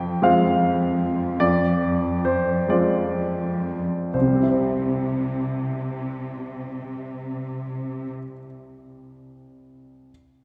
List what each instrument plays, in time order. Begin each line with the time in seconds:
Already playing: grand piano F2 G5, cello section F2
0.22 grand piano G#3 C4 F4 F5
1.40 grand piano F2 D5
2.25 grand piano C5
2.69 grand piano G#3 C4 F4 D5
4.13 grand piano C2 C5, cello section C3
4.21 grand piano C3
4.28 grand piano G3
4.35 grand piano C4
4.42 grand piano E4
4.49 grand piano C5